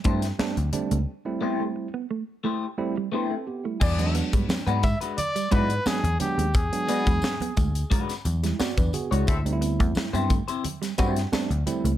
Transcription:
0.04 picked electric bass G2, tine electric piano G3 A3 C4 D4, clean electric guitar A3 E4 G4 C5, kick, closed hi-hat, high conga
0.22 snare, closed hi-hat
0.39 tine electric piano G3 A3 C4 D4, clean electric guitar B3, muted picked electric bass stroke, snare, muted conga
0.57 picked electric bass D2, closed hi-hat, muted conga, high conga
0.73 tine electric piano G3 A3 C4 D4, muted clean electric guitar stroke, closed hi-hat, low conga
0.91 picked electric bass C#2, clean electric guitar A3, closed hi-hat
1.25 tine electric piano G3 A3 C4 E4, muted clean electric guitar stroke
1.41 clean electric guitar A3 B3 E4 G4 C5
1.60 clean electric guitar A3
1.76 muted clean electric guitar stroke
1.94 clean electric guitar B3
2.11 clean electric guitar A3
2.44 clean electric guitar A3 E4 G4 C5
2.78 tine electric piano G3 A3 C4 E4, muted clean electric guitar stroke
2.97 clean electric guitar G3
3.12 clean electric guitar A3 B3 E4 G4 C5, tine electric piano D4 B4
3.31 tine electric piano C4 A4, muted clean electric guitar stroke
3.47 tine electric piano B3 G4
3.64 tine electric piano G3 E4, clean electric guitar A3
3.80 picked electric bass E2, horn section B3 D4 G#4 D5, kick, crash, tambourine
3.99 tine electric piano F#3 G#3 B3 C#4, muted clean electric guitar stroke, closed hi-hat, muted conga
4.05 tine electric piano D4
4.15 clean electric guitar B3, closed hi-hat, tambourine
4.33 picked electric bass G2, clean electric guitar G#3, kick, closed hi-hat, tambourine
4.49 muted picked electric bass stroke, muted clean electric guitar stroke, snare, tambourine, muted conga, high conga
4.67 picked electric bass G#2, clean electric guitar G#3 B3 D4 F#4 B4, closed hi-hat, muted conga, high conga
4.83 clean electric guitar G#3, trumpet E5, kick, closed hi-hat, tambourine, low conga
5.01 clean electric guitar G#3 D4 F#4 B4, closed hi-hat, tambourine
5.17 trumpet D5, muted clean electric guitar stroke, closed hi-hat, high conga, low conga
5.36 clean electric guitar G3, closed hi-hat, tambourine, muted conga
5.51 picked electric bass G#2, tine electric piano F#3 G#3 B3 E4, clean electric guitar G#3 D4 F#4 B4, trumpet B4, kick, closed hi-hat, tambourine, high conga
5.70 closed hi-hat
5.86 tine electric piano F#3 G#3 B3 D4, clean electric guitar B3, trumpet G#4, muted picked electric bass stroke, snare, tambourine, muted conga
6.04 picked electric bass E2, closed hi-hat, muted conga, high conga
6.19 tine electric piano F#3 G#3 B3 D4, trumpet G4, muted clean electric guitar stroke, closed hi-hat, tambourine, low conga
6.38 picked electric bass D#2, clean electric guitar G#3, closed hi-hat
6.54 picked electric bass E2, trumpet G#4, kick, closed hi-hat, tambourine, muted conga
6.72 tine electric piano F#3 G#3 B3 D4, muted clean electric guitar stroke, closed hi-hat, muted conga
6.88 clean electric guitar G#3 B3 D4 F#4 B4, closed hi-hat, tambourine
7.06 picked electric bass E2, clean electric guitar G#3, kick, closed hi-hat, tambourine
7.22 muted clean electric guitar stroke, snare, tambourine, high conga
7.40 clean electric guitar B3, closed hi-hat, muted conga, high conga
7.57 picked electric bass D2, clean electric guitar G#3, kick, closed hi-hat, tambourine, low conga
7.75 closed hi-hat, tambourine
7.90 clean electric guitar G#3 D4 F#4 B4, kick, closed hi-hat, muted conga, high conga, low conga
8.09 snare, closed hi-hat, tambourine, muted conga
8.25 picked electric bass E2, muted clean electric guitar stroke, closed hi-hat, tambourine, high conga
8.43 clean electric guitar G3, tine electric piano G#3 E4, snare, closed hi-hat, tambourine
8.59 clean electric guitar B3, tine electric piano F#4 D5, muted picked electric bass stroke, snare, tambourine, muted conga
8.77 picked electric bass E2, tine electric piano D4 B4, muted clean electric guitar stroke, kick, closed hi-hat, tambourine, muted conga, high conga
8.93 tine electric piano B3 F#4 G#4, closed hi-hat, tambourine, low conga
9.11 picked electric bass C#2, clean electric guitar G#3 D4 F#4 C#5, tine electric piano G#3 E4, closed hi-hat
9.27 picked electric bass D2, horn section C4 E4 A4 E5, kick, closed hi-hat, tambourine
9.46 tine electric piano G3 A3 C4 D#4, muted clean electric guitar stroke, closed hi-hat
9.53 tine electric piano E4
9.61 clean electric guitar B3, closed hi-hat, tambourine
9.80 picked electric bass E2, clean electric guitar A3, kick, closed hi-hat, tambourine
9.95 muted clean electric guitar stroke, muted picked electric bass stroke, snare, tambourine, high conga
10.13 picked electric bass G2, clean electric guitar B3 C4 E4 G4 C5, closed hi-hat, muted conga, high conga
10.30 clean electric guitar A3, kick, closed hi-hat, tambourine, low conga
10.48 clean electric guitar C4 E4 G4 C5, closed hi-hat, tambourine
10.64 muted clean electric guitar stroke, closed hi-hat, muted conga, high conga, low conga
10.82 clean electric guitar G3, snare, closed hi-hat, tambourine
10.98 picked electric bass G2, tine electric piano G3 A3 C4 F#4, clean electric guitar A3 C4 E4 G4 C5, kick, closed hi-hat, tambourine, high conga
11.16 snare, closed hi-hat
11.32 tine electric piano G3 A3 C4 D4, clean electric guitar B3, muted picked electric bass stroke, snare, tambourine, muted conga
11.51 picked electric bass D2, closed hi-hat, muted conga, high conga
11.66 tine electric piano G3 A3 C4 E4, muted clean electric guitar stroke, closed hi-hat, tambourine, low conga
11.85 picked electric bass C#2, clean electric guitar A3, closed hi-hat

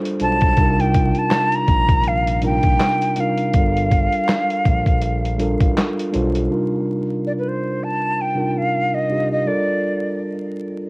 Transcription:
Already playing: tine electric piano G3 D4 F4 A4 C5
0.05 closed hi-hat
0.20 analog synth bass B1, tine electric piano G3 D4 F4 A4 C5, flute A5, closed hi-hat
0.41 kick, closed hi-hat
0.57 analog synth bass C2, tine electric piano C3 G3 D4 D#4 F4, kick, closed hi-hat
0.61 tine electric piano A#4
0.80 flute G5, closed hi-hat
0.94 kick, closed hi-hat
1.15 flute A5, closed hi-hat
1.31 snare, clap, closed hi-hat
1.52 flute A#5, closed hi-hat
1.68 analog synth bass A#1, kick, closed hi-hat
1.89 kick, closed hi-hat
2.04 closed hi-hat
2.08 flute F5
2.27 closed hi-hat
2.42 tine electric piano C3 G3 D4 D#4 F4 A#4, flute G5, closed hi-hat
2.63 analog synth bass A#1, kick, closed hi-hat
2.80 snare, clap, closed hi-hat
3.02 closed hi-hat
3.16 tine electric piano C3 G3 D4 D#4 F4 A#4, closed hi-hat
3.20 flute F5
3.38 closed hi-hat
3.54 analog synth bass G1, tine electric piano G3 D4 F4 A4, kick, closed hi-hat
3.58 tine electric piano A#4
3.77 closed hi-hat
3.91 kick, closed hi-hat
4.12 closed hi-hat
4.29 snare, clap, closed hi-hat
4.50 closed hi-hat
4.65 analog synth bass A#1, kick, closed hi-hat
4.86 kick, closed hi-hat
5.01 closed hi-hat
5.25 closed hi-hat
5.38 tine electric piano G3 D4 F4 A4 A#4, closed hi-hat
5.60 analog synth bass A1, kick, closed hi-hat
5.77 snare, clap, closed hi-hat
5.99 closed hi-hat
6.12 analog synth bass B1, tine electric piano G3 D4 F4 A4 C5, closed hi-hat
6.35 closed hi-hat
6.50 tine electric piano C3 G3 D4 D#4 F4 A#4
7.27 flute D5
7.39 flute B4
7.48 flute C5
7.84 flute A5
8.21 flute G5
8.35 tine electric piano C3 G3 D4 D#4 F4 A#4
8.58 flute F5
8.94 flute D#5
9.09 tine electric piano C3 G3 D4 D#4 F4 G4
9.32 flute D#5
9.46 tine electric piano G3 D4 F4 A4 A#4, flute D5

